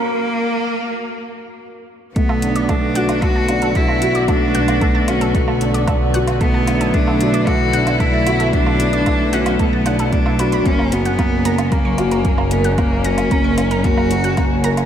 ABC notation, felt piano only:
X:1
M:4/4
L:1/8
Q:1/4=113
K:Bm
V:1 name="Felt piano"
z8 | A, D A, F A, D A, F | A, D A, F A, D A, F | A, D A, F A, D A, F |
A, D A, F A, D A, F | ^A, F A, ^A A, F A, A | ^A, F A, ^A A, F A, A |]